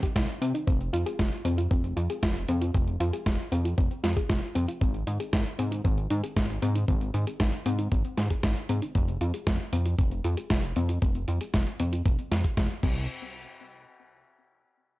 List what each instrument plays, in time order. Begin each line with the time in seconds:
0.03 synth arpeggio sound G4, kick, closed hi-hat
0.16 analog synth bass C2, synth arpeggio sound D#4, kick, snare, closed hi-hat
0.29 closed hi-hat
0.41 analog synth bass C3, synth arpeggio sound C4, closed hi-hat
0.54 synth arpeggio sound D#4, closed hi-hat
0.67 analog synth bass F1, synth arpeggio sound C4, kick, closed hi-hat
0.81 closed hi-hat
0.93 analog synth bass F2, synth arpeggio sound F4, closed hi-hat
1.06 synth arpeggio sound G#4, closed hi-hat
1.19 analog synth bass F1, synth arpeggio sound F4, kick, snare, closed hi-hat
1.32 closed hi-hat
1.45 analog synth bass F2, synth arpeggio sound C4, closed hi-hat
1.58 synth arpeggio sound F4, closed hi-hat
1.71 analog synth bass F1, synth arpeggio sound C4, kick, closed hi-hat
1.84 closed hi-hat
1.97 analog synth bass F2, synth arpeggio sound F4, closed hi-hat
2.10 synth arpeggio sound G#4, closed hi-hat
2.23 analog synth bass F1, synth arpeggio sound F4, kick, snare, closed hi-hat
2.36 closed hi-hat
2.48 analog synth bass F2, synth arpeggio sound C4, closed hi-hat
2.61 synth arpeggio sound F4, closed hi-hat
2.74 analog synth bass F1, synth arpeggio sound C4, kick, closed hi-hat
2.87 closed hi-hat
3.00 analog synth bass F2, synth arpeggio sound F4, closed hi-hat
3.13 synth arpeggio sound G#4, closed hi-hat
3.26 analog synth bass F1, synth arpeggio sound F4, kick, snare, closed hi-hat
3.39 closed hi-hat
3.52 analog synth bass F2, synth arpeggio sound C4, closed hi-hat
3.65 synth arpeggio sound F4, closed hi-hat
3.78 analog synth bass F1, synth arpeggio sound C4, kick, closed hi-hat
3.91 closed hi-hat
4.03 analog synth bass F2, synth arpeggio sound F4, snare, closed hi-hat
4.16 synth arpeggio sound G#4, kick, closed hi-hat
4.29 analog synth bass F1, synth arpeggio sound F4, kick, snare, closed hi-hat
4.42 closed hi-hat
4.55 analog synth bass F2, synth arpeggio sound C4, closed hi-hat
4.68 synth arpeggio sound F4, closed hi-hat
4.81 analog synth bass G#1, synth arpeggio sound C4, kick, closed hi-hat
4.94 closed hi-hat
5.07 analog synth bass G#2, synth arpeggio sound D#4, closed hi-hat
5.20 synth arpeggio sound G#4, closed hi-hat
5.33 analog synth bass G#1, synth arpeggio sound D#4, kick, snare, closed hi-hat
5.46 closed hi-hat
5.59 analog synth bass G#2, synth arpeggio sound C4, closed hi-hat
5.72 synth arpeggio sound D#4, closed hi-hat
5.84 analog synth bass G#1, synth arpeggio sound C4, kick, closed hi-hat
5.98 closed hi-hat
6.10 analog synth bass G#2, synth arpeggio sound D#4, closed hi-hat
6.23 synth arpeggio sound G#4, closed hi-hat
6.36 analog synth bass G#1, synth arpeggio sound D#4, kick, snare, closed hi-hat
6.49 closed hi-hat
6.62 analog synth bass G#2, synth arpeggio sound C4, closed hi-hat
6.75 synth arpeggio sound D#4, closed hi-hat
6.88 analog synth bass G#1, synth arpeggio sound C4, kick, closed hi-hat
7.01 closed hi-hat
7.14 analog synth bass G#2, synth arpeggio sound D#4, closed hi-hat
7.27 synth arpeggio sound G#4, closed hi-hat
7.40 analog synth bass G#1, synth arpeggio sound D#4, kick, snare, closed hi-hat
7.53 closed hi-hat
7.66 analog synth bass G#2, synth arpeggio sound C4, closed hi-hat
7.79 synth arpeggio sound D#4, closed hi-hat
7.92 analog synth bass G#1, synth arpeggio sound C4, kick, closed hi-hat
8.05 closed hi-hat
8.17 analog synth bass G#2, synth arpeggio sound D#4, snare, closed hi-hat
8.30 synth arpeggio sound G#4, kick, closed hi-hat
8.43 analog synth bass G#1, synth arpeggio sound D#4, kick, snare, closed hi-hat
8.56 closed hi-hat
8.69 analog synth bass G#2, synth arpeggio sound C4, closed hi-hat
8.82 synth arpeggio sound D#4, closed hi-hat
8.95 analog synth bass F1, synth arpeggio sound C4, kick, closed hi-hat
9.08 closed hi-hat
9.21 analog synth bass F2, synth arpeggio sound F4, closed hi-hat
9.34 synth arpeggio sound G#4, closed hi-hat
9.47 analog synth bass F1, synth arpeggio sound F4, kick, snare, closed hi-hat
9.60 closed hi-hat
9.73 analog synth bass F2, synth arpeggio sound C4, closed hi-hat
9.86 synth arpeggio sound F4, closed hi-hat
9.98 analog synth bass F1, synth arpeggio sound C4, kick, closed hi-hat
10.11 closed hi-hat
10.24 analog synth bass F2, synth arpeggio sound F4, closed hi-hat
10.37 synth arpeggio sound G#4, closed hi-hat
10.50 analog synth bass F1, synth arpeggio sound F4, kick, snare, closed hi-hat
10.63 closed hi-hat
10.76 analog synth bass F2, synth arpeggio sound C4, closed hi-hat
10.89 synth arpeggio sound F4, closed hi-hat
11.02 analog synth bass F1, synth arpeggio sound C4, kick, closed hi-hat
11.15 closed hi-hat
11.28 analog synth bass F2, synth arpeggio sound F4, closed hi-hat
11.41 synth arpeggio sound G#4, closed hi-hat
11.54 analog synth bass F1, synth arpeggio sound F4, kick, snare, closed hi-hat
11.67 closed hi-hat
11.80 analog synth bass F2, synth arpeggio sound C4, closed hi-hat
11.93 synth arpeggio sound F4, closed hi-hat
12.06 analog synth bass F1, synth arpeggio sound C4, kick, closed hi-hat
12.19 closed hi-hat
12.31 analog synth bass F2, synth arpeggio sound F4, snare, closed hi-hat
12.44 synth arpeggio sound G#4, kick, closed hi-hat
12.57 analog synth bass F1, synth arpeggio sound F4, kick, snare, closed hi-hat
12.70 closed hi-hat
12.83 analog synth bass C2, synth arpeggio sound C4, kick, crash